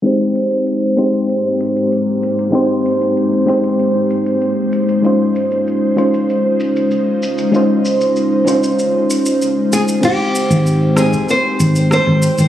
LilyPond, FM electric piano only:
\new Staff \with { instrumentName = "FM electric piano" } { \time 4/4 \key aes \major \tempo 4 = 96 <aes c' ees' g' c''>4. <aes c' ees' g' c''>8 r2 | <aes c' ees' g' c''>4. <aes c' ees' g' c''>2~ <aes c' ees' g' c''>8 | <aes des' ees' f' c''>4. <aes des' ees' f' c''>8 r2 | <aes des' ees' f' c''>4. <aes des' ees' f' c''>2~ <aes des' ees' f' c''>8 |
<aes c' ees' g' c''>4. <aes c' ees' g' c''>8 r2 | }